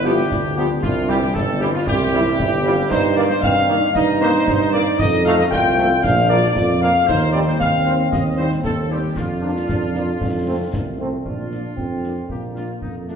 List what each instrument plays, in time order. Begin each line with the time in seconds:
Already playing: tuba G1, euphonium E4
0.03 trombone section F3 B3, french horn section G3 B3 F4, trumpet section G4, woodwind section G4
0.18 snare
0.30 tuba D2, euphonium D4, concert bass drum, snare
0.56 trombone section F3 B3, french horn section G3 B3 F4, woodwind section G4, trumpet section G4
0.82 tuba C2, trumpet section F4, woodwind section F4, concert bass drum, snare
1.07 trombone section E3 G3, french horn section G3 C4 E4, trumpet section G4, woodwind section G4
1.22 snare
1.34 tuba G1, trumpet section A4, woodwind section A4, concert bass drum, snare
1.60 trombone section E3 G3, french horn section G3 C4 E4, woodwind section G4, trumpet section G4, snare
1.74 woodwind section F4, trumpet section F4
1.86 tuba C2, euphonium C4, woodwind section G4, trumpet section G4, concert bass drum, snare
2.12 trombone section E3 G3, french horn section G3 C4 E4, euphonium E4
2.39 tuba G1, euphonium E4, concert bass drum, snare
2.63 trombone section E3 G3, french horn section G3 C4 E4, euphonium F4
2.90 tuba G2, euphonium D#4, trumpet section C5, woodwind section C5, concert bass drum, snare, crash
3.16 trombone section D#3 A#3, french horn section A#3 D#4, woodwind section D5, trumpet section D5
3.29 trumpet section C5, woodwind section C5, snare
3.41 tuba G2, euphonium C4, woodwind section F5, trumpet section F5, concert bass drum, snare
3.68 trombone section D#3 A#3, french horn section A#3 D#4, euphonium D4, snare
3.95 tuba G2, euphonium D#4, trumpet section D#5, woodwind section D#5, concert bass drum, snare
4.20 trombone section D#3 A#3, french horn section A#3 C4 D#4, trumpet section C5, woodwind section C5
4.34 snare
4.46 tuba G2, concert bass drum, snare
4.72 trombone section D#3 A#3, french horn section A#3 C4 D#4, woodwind section D5, trumpet section D5
4.99 tuba F2, woodwind section D#5, trumpet section D#5, concert bass drum, snare
5.25 trombone section F3 A3, french horn section A3 C4 F4, woodwind section F5, trumpet section F5
5.38 woodwind section D#5, trumpet section D#5, snare
5.50 tuba C2, euphonium F4, trumpet section G5, woodwind section G5, concert bass drum, snare
5.77 trombone section F3 A3, french horn section A3 C4 F4, snare
6.02 tuba A#1, euphonium D4, trumpet section F5, woodwind section F5, concert bass drum, snare
6.29 french horn section F3 A#3 F4, trombone section F3 A#3, trumpet section D5, woodwind section D5
6.43 snare
6.55 tuba F2, euphonium F4, concert bass drum, snare
6.81 trombone section F3 A#3, french horn section F3 A#3 F4, trumpet section F5, woodwind section F5
7.06 tuba D#2, euphonium D#4, trumpet section C5, woodwind section C5, concert bass drum, snare, crash
7.32 trombone section G3 C4, french horn section G3 C4 D#4, trumpet section D5, woodwind section D5
7.46 trumpet section C5, woodwind section C5, snare
7.58 tuba D#2, euphonium C4, trumpet section F5, woodwind section F5, concert bass drum, snare
7.86 french horn section G3 C4 D#4, trombone section G3 C4, snare
8.11 tuba D#2, trumpet section D#5, woodwind section D#5, concert bass drum, snare
8.37 french horn section G3 C4 D#4, trombone section G3 C4, woodwind section C5, trumpet section C5
8.52 snare
8.63 tuba D#2, trumpet section A4, woodwind section A4, concert bass drum, snare
8.89 french horn section G3 C4 D#4, trombone section G3 C4, trumpet section G4, woodwind section G4
9.16 tuba F2, euphonium D4, trumpet section F4, woodwind section F4, concert bass drum, snare
9.42 french horn section F3 A#3 D4, trombone section A#3 D4
9.56 snare
9.68 tuba F2, concert bass drum, snare
9.94 french horn section F3 A#3 D4, trombone section A#3 D4, snare
10.20 tuba F2, concert bass drum, snare
10.46 french horn section F3 A3 C4, trombone section A3 C4
10.73 tuba C2, concert bass drum, snare
10.98 french horn section F3 A3 C4, trombone section A3 C4
11.25 tuba A#1, euphonium D4, woodwind section F4, concert bass drum
11.51 french horn section A#3 D4 F4, trumpet section D5, snare
11.77 tuba F2, euphonium C4, concert bass drum
12.03 french horn section A#3 D4 F4, trumpet section D5, snare
12.29 tuba A#1, euphonium A#3, woodwind section G4, concert bass drum
12.55 french horn section A#3 D4 F4, woodwind section F4, trumpet section D5, snare
12.82 tuba F2, woodwind section D#4, concert bass drum
13.07 euphonium A3, french horn section A#3 D4 F4, woodwind section D4, trumpet section D5, snare